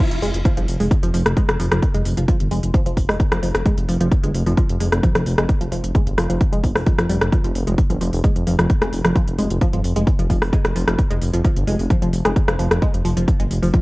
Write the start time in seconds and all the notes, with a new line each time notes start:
0.11 F1, closed hi-hat
0.22 F1 G#3, open hi-hat
0.34 F1, closed hi-hat
0.45 F3, kick, closed hi-hat
0.57 G1 F3, closed hi-hat
0.68 F1, open hi-hat
0.80 F1 G#3, open hi-hat
0.91 kick, closed hi-hat
1.03 F1 F3, closed hi-hat
1.14 F1 F3, open hi-hat
1.26 F1, cross-stick, closed hi-hat
1.37 G#3, kick, closed hi-hat
1.49 F1, cross-stick, closed hi-hat
1.60 F1 F3, open hi-hat
1.72 F1 F3, cross-stick, closed hi-hat
1.83 kick, closed hi-hat
1.94 F1 G#3, closed hi-hat
2.06 F1, open hi-hat
2.17 F1 F3, closed hi-hat
2.28 F3, kick, closed hi-hat
2.40 G1, closed hi-hat
2.51 F1 G#3, open hi-hat
2.63 F1, closed hi-hat
2.74 F3, kick, closed hi-hat
2.86 F1 F3, closed hi-hat
2.97 F1, kick, open hi-hat
3.09 F1 G#3, cross-stick, open hi-hat
3.20 kick, closed hi-hat
3.32 F1 F3, cross-stick, closed hi-hat
3.43 F1 F3, open hi-hat
3.55 F1, cross-stick, closed hi-hat
3.66 G#3, kick, closed hi-hat
3.78 F1, closed hi-hat
3.89 F1 F3, open hi-hat
4.01 F1 F3, closed hi-hat
4.12 kick, closed hi-hat
4.23 G1 G#3, closed hi-hat
4.34 F1, open hi-hat
4.46 F1 F3, open hi-hat
4.57 F3, kick, closed hi-hat
4.69 F1, closed hi-hat
4.80 F1 G#3, open hi-hat
4.92 F1, cross-stick, closed hi-hat
5.03 F3, kick, closed hi-hat
5.15 F1 F3, cross-stick, closed hi-hat
5.26 F1, open hi-hat
5.38 F1 G#3, cross-stick, closed hi-hat
5.49 kick, closed hi-hat
5.61 F1 F3, closed hi-hat
5.72 F1 F3, open hi-hat
5.84 F1, closed hi-hat
5.95 G#3, kick, closed hi-hat
6.07 G1, closed hi-hat
6.18 F1 F3, cross-stick, open hi-hat
6.30 F1 F3, closed hi-hat
6.41 kick, closed hi-hat
6.53 F1 G#3, closed hi-hat
6.64 G1, kick, open hi-hat
6.75 F1 F3, cross-stick, open hi-hat
6.86 F3, kick, closed hi-hat
6.98 F1 F3, cross-stick, closed hi-hat
7.09 F1 G3, open hi-hat
7.21 F1, cross-stick, closed hi-hat
7.32 F3, kick, closed hi-hat
7.44 F1 F3, closed hi-hat
7.55 F1, open hi-hat
7.67 F1 G#3, closed hi-hat
7.78 kick, closed hi-hat
7.90 G1 F3, closed hi-hat
8.01 F1 F3, open hi-hat
8.13 F1, open hi-hat
8.24 G#3, kick, closed hi-hat
8.36 F1, closed hi-hat
8.47 F1 F3, open hi-hat
8.59 F1 F3, cross-stick, closed hi-hat
8.70 kick, closed hi-hat
8.82 F1 G#3, cross-stick, closed hi-hat
8.93 F1, open hi-hat
9.04 F1 F3, cross-stick, closed hi-hat
9.15 F3, kick, closed hi-hat
9.27 F1, closed hi-hat
9.38 F1 G#3, open hi-hat
9.50 F1, closed hi-hat
9.61 F3, kick, closed hi-hat
9.73 G1 F3, closed hi-hat
9.84 F1, open hi-hat
9.96 F1 G#3, closed hi-hat
10.07 kick, closed hi-hat
10.19 F1 F3, closed hi-hat
10.30 F1 F3, kick, open hi-hat
10.42 F1, cross-stick, open hi-hat
10.53 G#3, kick, closed hi-hat
10.65 F1, cross-stick, closed hi-hat
10.76 F1 F3, open hi-hat
10.88 F1 F3, cross-stick, closed hi-hat
10.99 kick, closed hi-hat
11.11 F1 G#3, closed hi-hat
11.22 F1, open hi-hat
11.33 F1 F3, closed hi-hat
11.44 F3, kick, closed hi-hat
11.56 G1, closed hi-hat
11.67 F1 G#3, open hi-hat
11.79 F1, open hi-hat
11.90 F3, kick, closed hi-hat
12.02 F1 F3, closed hi-hat
12.13 F1, open hi-hat
12.25 F1 G#3, cross-stick, closed hi-hat
12.36 kick, closed hi-hat
12.48 F1 F3, cross-stick, closed hi-hat
12.59 F1 F3, open hi-hat
12.71 F1, cross-stick, closed hi-hat
12.82 G#3, kick, closed hi-hat
12.94 F1, closed hi-hat
13.05 F1 F3, open hi-hat
13.17 F1 F3, closed hi-hat
13.28 kick, closed hi-hat
13.40 G1 G#3, closed hi-hat
13.51 F1, open hi-hat
13.62 F1 F3, open hi-hat
13.73 F3, kick, closed hi-hat